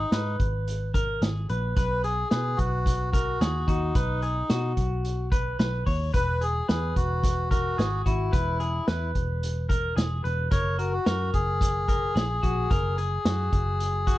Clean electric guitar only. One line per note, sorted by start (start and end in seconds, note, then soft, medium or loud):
0.00 0.12 G#4 medium
0.13 0.91 B4 medium
0.94 1.22 A#4 medium
1.22 1.49 G#4 medium
1.50 1.75 B4 medium
1.77 2.04 B4 medium
2.04 2.31 G#4 medium
2.32 3.10 B4 medium
3.13 3.41 A#4 medium
3.41 3.68 G#4 medium
3.68 3.95 F#4 medium
3.96 4.22 B4 medium
4.23 4.50 G#4 medium
4.50 5.28 F#4 medium
5.32 5.58 B4 medium
5.59 5.86 B4 medium
5.86 6.13 C#5 medium
6.14 6.41 B4 medium
6.41 6.68 G#4 medium
6.68 7.47 B4 medium
7.51 7.78 A#4 medium
7.78 8.06 G#4 medium
8.06 8.33 F#4 medium
8.32 8.60 B4 medium
8.60 8.87 G#4 medium
8.88 9.66 B4 medium
9.69 9.96 A#4 medium
9.96 10.24 G#4 medium
10.24 10.51 B4 medium
10.51 10.79 A#4 medium
10.79 11.06 F#4 medium
11.06 11.84 A#4 medium
11.88 12.15 A#4 medium
12.16 12.43 G#4 medium
12.43 12.70 F#4 medium
12.71 12.98 A#4 medium
12.98 13.25 G#4 medium
13.25 14.03 F#4 medium
14.07 14.18 F#4 medium